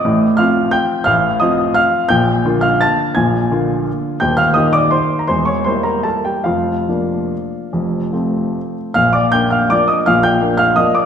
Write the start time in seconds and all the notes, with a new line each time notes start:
Already playing: D#5 D#6
0.05 A1 A2
0.37 F3 C4 F4 F5 F6
0.71 G5 G6
1.04 A1 A2 F5 F6
1.40 F3 C4 F4 D#5 D#6
1.74 F5 F6
2.09 A#1 A#2 G5 G6
2.45 D3 A#3 F4
2.61 F5 F6
2.81 A5 A6
3.15 A#1 A#2 G#5 G#6
3.51 D3 A#3 F4
4.20 D#1 D#2 G5 G6
4.37 F5 F6
4.54 D#3 A#3 G4 D#5 D#6
4.73 D5 D6
4.91 C5 C6
5.19 A#5
5.27 E1 E2 C5 C6
5.45 C#5 C#6
5.64 G3 A#3 E4 C5 C6
5.83 A#4 A#5
6.03 A4 A5
6.25 G4 G5
6.44 F1 F2 F4 F5
6.88 F3 A#3 D4
7.73 F1 F2
8.12 F3 A3 C4
8.94 A#1 A#2 F5 F6
9.13 D5 D6
9.32 A#3 D4 G5 G6
9.50 F5 F6
9.70 F3 A#3 D4 D5 D6
9.88 D#5 D#6
10.06 A#1 A#2 F5 F6
10.23 G5 G6
10.42 A#3 D4
10.57 F5 F6
10.76 F3 A#3 D4 D#5 D#6
10.95 D5 D6